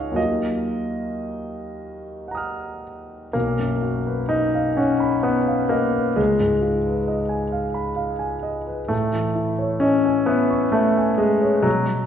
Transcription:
0.00 0.13 C#2 soft
0.00 0.19 C#4 soft
0.00 0.15 D#4 soft
0.00 0.17 F4 soft
0.00 0.19 C#5 medium
0.00 0.16 D#5 medium
0.00 0.16 F5 medium
0.00 0.19 F#5 medium
0.12 3.28 D#2 soft
0.12 3.29 F#3 soft
0.12 3.29 A#3 soft
0.12 3.30 D#4 soft
0.16 3.30 F4 soft
0.16 2.82 D#5 medium
2.28 3.30 F#5 soft
2.28 3.32 A#5 soft
2.35 3.34 D#6 soft
2.35 3.35 F6 soft
3.33 6.15 B1 soft
3.33 4.31 A#3 medium
3.59 3.98 F#2 soft
3.82 4.21 F#4 soft
4.07 4.45 B4 soft
4.29 4.77 D#4 medium
4.29 4.68 D#5 soft
4.55 4.92 F5 soft
4.77 5.24 C#4 medium
4.77 5.15 F#5 soft
5.00 5.38 B5 soft
5.23 5.71 B3 medium
5.23 5.62 F#5 soft
5.47 5.85 F5 soft
5.69 6.17 A#3 medium
5.69 6.09 D#5 soft
5.95 6.18 B4 soft
6.16 8.87 C#2 soft
6.16 8.90 G#3 medium
6.40 6.77 G#2 soft
6.61 6.98 F4 soft
6.86 7.22 B4 soft
7.08 7.44 D#5 soft
7.29 7.66 G#5 soft
7.52 7.89 F5 soft
7.74 8.12 B5 soft
7.96 8.34 F5 soft
8.19 8.58 G#5 soft
8.43 8.81 D#5 soft
8.67 8.91 B4 soft
8.88 11.60 A2 soft
8.88 9.84 A3 medium
9.13 9.51 E3 soft
9.35 9.74 E4 soft
9.59 9.98 C#5 soft
9.80 10.29 C#4 medium
9.80 10.20 D#5 soft
10.05 10.43 G#5 soft
10.26 10.74 B3 medium
10.26 10.65 E5 soft
10.50 10.88 C#6 soft
10.72 11.19 A3 medium
10.72 11.11 E5 soft
10.97 11.33 G#5 soft
11.18 11.63 G#3 medium
11.18 11.55 D#5 soft
11.42 11.64 C#5 soft
11.62 12.06 B2 soft
11.62 11.85 F#3 medium
11.86 12.06 F#3 soft

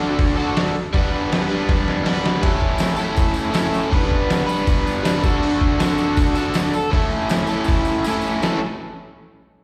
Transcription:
0.00 0.35 D3 medium
0.00 0.36 D4 medium
0.00 0.36 F#4 medium
0.00 0.36 A4 loud
0.19 kick loud
0.19 open hi-hat medium
0.37 0.75 D3 medium
0.37 0.75 D4 medium
0.37 0.74 F#4 medium
0.37 0.74 A4 medium
0.57 snare loud
0.57 open hi-hat medium
0.93 1.48 G3 loud
0.93 1.48 B3 loud
0.93 1.49 D4 loud
0.93 kick loud
0.93 open hi-hat medium
0.98 1.46 B4 loud
1.32 snare loud
1.32 open hi-hat medium
1.47 2.03 G3 medium
1.47 2.04 B3 medium
1.47 2.04 D4 medium
1.47 2.04 B4 medium
1.69 kick loud
1.69 snare medium
1.69 open hi-hat medium
1.88 snare medium
2.04 2.41 G3 medium
2.04 2.43 B3 medium
2.04 2.42 D4 medium
2.04 snare loud
2.04 open hi-hat medium
2.08 2.43 B4 medium
2.26 snare loud
2.42 2.97 A2 loud
2.42 2.98 A3 loud
2.42 2.98 C#4 loud
2.42 2.97 E4 loud
2.42 2.95 A4 loud
2.42 kick loud
2.42 crash loud
2.62 kick medium
2.78 snare loud
2.78 open hi-hat medium
2.78 tambourine loud
2.96 3.51 A3 medium
2.96 3.52 C#4 medium
2.96 3.53 E4 medium
2.96 3.53 A4 medium
2.96 tambourine medium
3.01 3.50 A2 medium
3.16 kick loud
3.16 open hi-hat medium
3.16 tambourine medium
3.34 tambourine medium
3.51 3.89 A2 medium
3.51 3.90 A3 medium
3.51 3.91 C#4 medium
3.51 3.91 E4 medium
3.51 open hi-hat medium
3.51 tambourine loud
3.55 3.92 A4 medium
3.55 snare loud
3.74 tambourine medium
3.91 4.47 G3 medium
3.91 4.46 B3 loud
3.91 4.48 D4 loud
3.91 4.45 B4 loud
3.91 kick loud
3.91 open hi-hat medium
4.11 kick medium
4.30 snare loud
4.30 open hi-hat medium
4.30 tambourine medium
4.46 5.02 G3 medium
4.46 5.04 B3 medium
4.46 5.03 D4 medium
4.46 5.03 B4 medium
4.46 tambourine medium
4.67 kick loud
4.67 open hi-hat medium
4.67 tambourine medium
4.87 tambourine medium
5.03 5.22 G3 medium
5.03 5.23 B3 medium
5.03 5.23 D4 medium
5.03 5.24 B4 medium
5.03 snare loud
5.03 open hi-hat medium
5.03 tambourine loud
5.23 5.77 D3 medium
5.23 5.79 D4 loud
5.23 5.80 F#4 loud
5.23 5.82 A4 loud
5.23 kick loud
5.23 tambourine medium
5.43 open hi-hat medium
5.61 kick medium
5.78 6.35 D3 medium
5.78 6.36 D4 medium
5.78 6.35 F#4 medium
5.78 snare loud
5.78 open hi-hat medium
5.78 tambourine loud
5.83 6.35 A4 medium
5.98 tambourine medium
6.17 kick loud
6.17 open hi-hat medium
6.17 tambourine medium
6.35 6.75 D3 medium
6.35 6.74 D4 medium
6.35 6.73 F#4 medium
6.35 6.93 A4 medium
6.35 tambourine medium
6.54 snare loud
6.54 open hi-hat medium
6.54 tambourine loud
6.73 tambourine medium
6.91 7.47 A2 loud
6.91 7.48 A3 loud
6.91 7.48 C#4 loud
6.91 7.48 E4 loud
6.91 7.48 A4 loud
6.91 kick loud
6.91 open hi-hat medium
7.11 tambourine soft
7.21 tambourine soft
7.29 snare loud
7.29 open hi-hat medium
7.29 tambourine loud
7.39 tambourine soft
7.47 8.05 E4 medium
7.47 8.05 A4 medium
7.47 tambourine medium
7.51 8.05 A2 medium
7.51 8.06 A3 medium
7.51 8.06 C#4 medium
7.64 tambourine medium
7.69 kick loud
7.69 open hi-hat medium
7.85 tambourine medium
7.95 tambourine soft
8.04 8.43 A2 medium
8.04 8.42 A3 medium
8.04 8.43 C#4 medium
8.04 open hi-hat medium
8.04 tambourine loud
8.09 8.44 E4 medium
8.09 8.44 A4 medium
8.14 tambourine soft
8.21 tambourine medium
8.33 tambourine soft
8.42 8.59 A2 loud
8.42 8.59 E3 loud
8.42 8.59 A3 loud
8.42 8.59 C#4 loud
8.42 8.59 A4 loud
8.42 snare medium
8.42 tambourine medium

